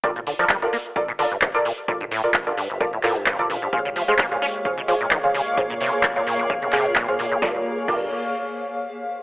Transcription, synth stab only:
X:1
M:4/4
L:1/16
Q:"Swing 16ths" 1/4=130
K:Bblyd
V:1 name="Synth stab"
[FABd] z2 [FABd] z [FABd] z2 [FABd] z [FABd] z2 [FABd] z2 | [FABd] z2 [FABd] z [FABd] z2 [FABd] z [FABd] z2 [FABd] z2 | [_Ac_df] z2 [Acdf] z [Acdf] z2 [Acdf] z [Acdf] z2 [Acdf] z2 | [_Ac_df] z2 [Acdf] z [Acdf] z2 [Acdf] z [Acdf] z2 [Acdf] z2 |
[FABd] z3 [FABd]2 z8 z2 |]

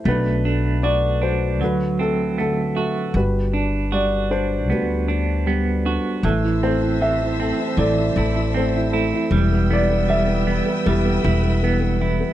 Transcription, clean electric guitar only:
X:1
M:4/4
L:1/8
Q:1/4=78
K:Ador
V:1 name="Clean electric guitar"
A, D F D F, C A, F | z D F D B, D B, F | E, C E, C E, E C E | G, B, G, B, G, E B, E |]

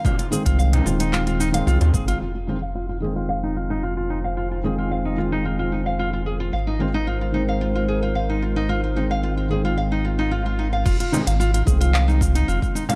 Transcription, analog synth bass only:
X:1
M:4/4
L:1/16
Q:1/4=111
K:Fm
V:1 name="Analog synth bass" clef=bass
z3 C,,3 E,,,6 C,, E,, A,,,2 | F,,,16- | F,,,16 | A,,,16- |
A,,,16 | F,,, z2 A,,,3 C,,6 F,,, z3 |]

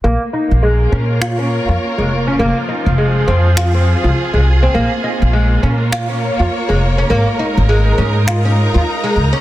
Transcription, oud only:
X:1
M:4/4
L:1/16
Q:"Swing 16ths" 1/4=102
K:Bbm
V:1 name="Oud"
B, z E z A,2 D z F D z F z A, z D | B, z E z A,2 C z F C z F z A, z C | B, z E z A,2 D z F D z F z A, z D | B, z E z A,2 D z F D z F z A, z D |]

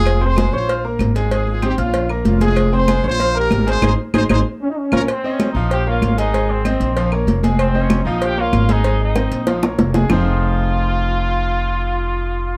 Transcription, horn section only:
X:1
M:4/4
L:1/8
Q:1/4=191
K:Fm
V:1 name="Horn section"
[FA] [Ac]2 [Fc]2 z3 | [EA] [FA] [EG] [DF]2 z [DF] [FA]- | [FA] [Ac]2 [Fc]2 [GB]2 [Ac] | [EAc] z [EAc] [EAc] z3 [DFB] |
z8 | z8 | z8 | z8 |
z8 | z8 |]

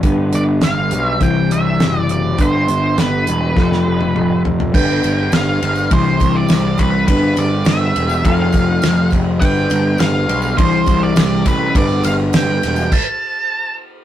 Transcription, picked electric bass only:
X:1
M:4/4
L:1/8
Q:1/4=103
K:Gmix
V:1 name="Picked electric bass" clef=bass
G,,, G,,, G,,, B,,, C,, C,, ^F,,,2 | G,,, G,,, G,,, E,,, F,,, F,,, F,,,2 | G,,, G,,, G,,, G,,, C,, C,, C,, C,, | G,,, G,,, G,,, E,,, F,,, F,,, F,,, F,,, |
G,,, G,,, G,,, B,,, C,, C,, C,, A,,, | G,,, G,,, G,,, E,,, z4 |]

